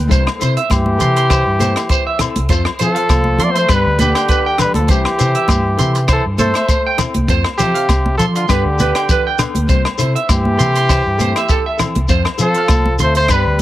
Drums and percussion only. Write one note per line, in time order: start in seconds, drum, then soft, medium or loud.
0.11 kick medium
0.11 closed hi-hat soft
0.11 shekere medium
0.27 cross-stick medium
0.27 low agogo medium
0.41 closed hi-hat soft
0.41 shekere medium
0.57 closed hi-hat soft
0.70 kick medium
0.70 cross-stick medium
0.70 closed hi-hat soft
0.70 high conga medium
0.70 low agogo medium
0.70 shekere medium
0.86 high conga medium
1.00 closed hi-hat soft
1.00 low conga medium
1.00 shekere medium
1.16 closed hi-hat soft
1.16 shekere soft
1.30 kick medium
1.30 cross-stick medium
1.30 closed hi-hat soft
1.30 low agogo medium
1.30 shekere medium
1.60 closed hi-hat soft
1.60 high conga medium
1.60 shekere medium
1.76 cross-stick medium
1.76 closed hi-hat soft
1.76 low agogo medium
1.76 shekere soft
1.89 kick medium
1.89 closed hi-hat soft
1.89 shekere medium
2.19 cross-stick medium
2.19 closed hi-hat soft
2.19 low conga medium
2.19 low agogo medium
2.19 shekere medium
2.36 closed hi-hat medium
2.36 high conga medium
2.49 kick medium
2.49 closed hi-hat soft
2.49 shekere medium
2.65 cross-stick medium
2.65 low agogo medium
2.79 closed hi-hat medium
2.79 shekere loud
2.96 closed hi-hat soft
3.09 kick medium
3.09 cross-stick medium
3.09 closed hi-hat soft
3.09 high conga medium
3.09 low agogo medium
3.09 shekere medium
3.24 high conga medium
3.38 closed hi-hat medium
3.38 low conga medium
3.56 closed hi-hat medium
3.56 shekere soft
3.69 kick medium
3.69 cross-stick medium
3.69 closed hi-hat soft
3.69 low agogo medium
3.69 shekere medium
3.99 closed hi-hat medium
3.99 high conga medium
3.99 shekere medium
4.15 cross-stick medium
4.15 closed hi-hat soft
4.15 low agogo medium
4.15 shekere soft
4.28 kick medium
4.28 closed hi-hat soft
4.28 shekere medium
4.58 cross-stick medium
4.58 closed hi-hat soft
4.58 low conga medium
4.58 low agogo medium
4.58 shekere loud
4.74 closed hi-hat soft
4.74 high conga medium
4.88 kick medium
4.88 closed hi-hat soft
4.88 shekere medium
5.05 cross-stick medium
5.05 low agogo medium
5.19 closed hi-hat soft
5.19 shekere loud
5.35 closed hi-hat soft
5.48 kick medium
5.48 cross-stick medium
5.48 closed hi-hat soft
5.48 high conga medium
5.48 low agogo medium
5.48 shekere medium
5.79 closed hi-hat soft
5.79 low conga medium
5.79 shekere medium
5.95 closed hi-hat soft
5.95 shekere soft
6.08 kick medium
6.08 cross-stick medium
6.08 closed hi-hat soft
6.08 low agogo medium
6.08 shekere medium
6.38 closed hi-hat soft
6.38 high conga medium
6.38 shekere medium
6.54 cross-stick medium
6.54 closed hi-hat soft
6.54 low agogo medium
6.54 shekere soft
6.68 kick medium
6.68 closed hi-hat soft
6.68 shekere medium
6.98 cross-stick medium
6.98 closed hi-hat soft
6.98 low conga medium
6.98 low agogo medium
6.98 shekere medium
7.14 closed hi-hat medium
7.14 high conga medium
7.28 kick medium
7.28 closed hi-hat soft
7.28 shekere medium
7.44 cross-stick medium
7.44 low agogo medium
7.59 closed hi-hat soft
7.59 low conga medium
7.59 shekere loud
7.75 closed hi-hat soft
7.89 kick medium
7.89 cross-stick medium
7.89 closed hi-hat soft
7.89 high conga medium
7.89 low agogo medium
7.89 shekere medium
8.06 high conga medium
8.19 closed hi-hat soft
8.19 low conga medium
8.19 shekere medium
8.36 closed hi-hat medium
8.36 shekere soft
8.49 kick medium
8.49 cross-stick medium
8.49 closed hi-hat medium
8.49 low agogo medium
8.49 shekere medium
8.79 closed hi-hat soft
8.79 high conga medium
8.79 shekere medium
8.95 cross-stick medium
8.95 closed hi-hat soft
8.95 low agogo medium
9.09 kick medium
9.09 closed hi-hat soft
9.09 low conga medium
9.09 shekere medium
9.39 cross-stick medium
9.39 closed hi-hat medium
9.39 low conga medium
9.39 low agogo medium
9.39 shekere loud
9.55 closed hi-hat medium
9.55 high conga medium
9.69 kick medium
9.69 closed hi-hat soft
9.69 shekere medium
9.85 cross-stick medium
9.85 low agogo medium
9.99 closed hi-hat medium
9.99 shekere loud
10.16 closed hi-hat soft
10.29 kick medium
10.29 cross-stick medium
10.29 closed hi-hat soft
10.29 high conga medium
10.29 low agogo medium
10.29 shekere medium
10.45 high conga medium
10.59 closed hi-hat soft
10.59 low conga medium
10.59 shekere medium
10.75 closed hi-hat soft
10.75 shekere soft
10.89 kick medium
10.89 cross-stick medium
10.89 closed hi-hat soft
10.89 low agogo medium
10.89 shekere medium
11.20 closed hi-hat soft
11.20 high conga medium
11.20 shekere medium
11.36 cross-stick medium
11.36 closed hi-hat soft
11.36 low agogo medium
11.36 shekere soft
11.49 kick medium
11.49 closed hi-hat soft
11.49 shekere medium
11.79 cross-stick medium
11.79 closed hi-hat soft
11.79 low conga medium
11.79 low agogo medium
11.79 shekere loud
11.95 closed hi-hat soft
11.95 high conga medium
12.09 kick medium
12.09 closed hi-hat soft
12.09 shekere medium
12.25 cross-stick medium
12.25 low agogo medium
12.39 closed hi-hat soft
12.39 shekere loud
12.54 closed hi-hat soft
12.68 kick medium
12.68 cross-stick medium
12.68 closed hi-hat soft
12.68 high conga medium
12.68 low agogo medium
12.68 shekere medium
12.86 high conga medium
12.99 closed hi-hat soft
12.99 low conga medium
12.99 shekere medium
13.15 closed hi-hat medium
13.15 shekere soft
13.28 kick medium
13.28 cross-stick medium
13.28 closed hi-hat soft
13.28 low agogo medium
13.28 shekere medium